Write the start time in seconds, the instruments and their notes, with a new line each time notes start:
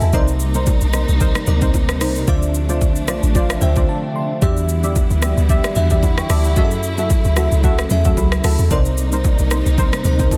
Already playing: string section C#3 F#3 A3 E4, synth stab F#4 A4 E5, fm electric piano A4 B4 D#5 E5 G#5
0.01 log drum bass E2, fm electric piano E5 A5, shaker
0.13 log drum bass C2, string section C3 G3 A#3 D#4, fm electric piano C3 C4 D#4 A#4 D5, synth stab D#4 A#4 C5, kick, low conga, shaker
0.28 shaker
0.40 shaker
0.54 synth stab D#4 A#4 C5, low bongo, shaker
0.66 kick, high bongo, shaker
0.81 log drum bass B1, shaker
0.93 synth stab D#4 A#4 C5, cross-stick, low bongo, shaker
1.09 log drum bass C2, shaker
1.20 synth stab D#4 A#4 C5, kick, low conga, shaker
1.35 cross-stick, shaker
1.47 log drum bass D2, fm electric piano C3 C4 D#4 A#4 D5, low conga, shaker
1.61 synth stab D#4 A#4 C5, kick, low bongo, shaker
1.74 kick, high bongo, shaker
1.89 cross-stick, shaker
2.01 log drum bass C2, synth stab D#4 A#4 C5, cross-stick, open hi-hat, shaker
2.16 shaker
2.27 log drum bass D2, fm electric piano D3 D4 F4 C5 E5, string section F3 A3 D4, synth stab F4 C5 D5, kick, low conga, shaker
2.42 shaker
2.55 shaker
2.69 synth stab F4 C5 D5, low bongo, shaker
2.81 kick, high bongo, shaker
2.96 log drum bass B1, shaker
3.08 synth stab F4 C5 D5, fm electric piano D5, cross-stick, low bongo, shaker
3.23 log drum bass A1, shaker
3.35 synth stab F4 C5 D5, fm electric piano F5, kick, low conga, shaker
3.50 cross-stick, shaker
3.61 log drum bass D2, fm electric piano D3 D4 F4 C5 E5 G5, low conga, shaker
3.76 synth stab F4 C5 D5, kick, low bongo, shaker
3.89 fm electric piano A5
4.16 fm electric piano C6
4.42 log drum bass E2, string section D3 G3 B3 E4, fm electric piano E3 D4 F#4 G4 E5, synth stab G4 D5 E5, kick, low conga, shaker
4.57 shaker
4.69 shaker
4.83 synth stab G4 D5 E5, low bongo, shaker
4.96 kick, high bongo, shaker
5.10 log drum bass D2, shaker
5.22 synth stab G4 D5 E5, cross-stick, low bongo, shaker
5.37 log drum bass D2, shaker
5.49 synth stab G4 D5 E5, kick, low conga, shaker
5.64 cross-stick, shaker
5.75 log drum bass E2, fm electric piano E3 D4 F#4 G4 E5, low conga, shaker
5.90 synth stab G4 D5 E5, kick, low bongo, shaker
6.03 fm electric piano F#5 B5, kick, high bongo, shaker
6.18 fm electric piano G5 C#6, cross-stick, shaker
6.30 log drum bass D2, synth stab G4 D5 E5, fm electric piano A5 D6, cross-stick, open hi-hat, shaker
6.44 fm electric piano F#5 B5, shaker
6.56 log drum bass F#2, string section C#3 F#3 A3, fm electric piano F#3 C#4 G#4 A4 D#5, synth stab F#4 A4 E5, kick, low conga, shaker
6.65 fm electric piano E5
6.71 shaker
6.83 shaker
6.98 synth stab F#4 A4 E5, low bongo, shaker
7.10 kick, high bongo, shaker
7.24 log drum bass D2, shaker
7.36 synth stab F#4 A4 E5, fm electric piano E5, cross-stick, low bongo, shaker
7.52 log drum bass C#2, shaker
7.64 synth stab F#4 A4 E5, fm electric piano F#5, kick, low conga, shaker
7.78 cross-stick, shaker
7.90 log drum bass E2, fm electric piano F#3 C#4 G#4 A4 E5, low conga, shaker
8.05 synth stab F#4 A4 E5, kick, low bongo, shaker
8.17 log drum bass C#2, fm electric piano B5, kick, high bongo, shaker
8.32 cross-stick, shaker
8.44 log drum bass D2, synth stab F#4 A4 E5, fm electric piano A5, cross-stick, open hi-hat, shaker
8.59 log drum bass E2, shaker
8.71 log drum bass C2, fm electric piano C3 C4 D#4 A#4 D5, string section C3 G3 A#3 D#4, synth stab D#4 A#4 C5, kick, low conga, shaker
8.85 shaker
8.98 shaker
9.12 synth stab D#4 A#4 C5, low bongo, shaker
9.24 kick, high bongo, shaker
9.39 log drum bass B1, shaker
9.51 synth stab D#4 A#4 C5, cross-stick, low bongo, shaker
9.66 log drum bass C2, shaker
9.78 synth stab D#4 A#4 C5, kick, low conga, shaker
9.93 cross-stick, shaker
10.04 log drum bass D2, fm electric piano C3 C4 D#4 A#4 C5, low conga, shaker
10.19 synth stab D#4 A#4 C5, kick, low bongo, shaker
10.31 fm electric piano D#5 A5, kick, high bongo, shaker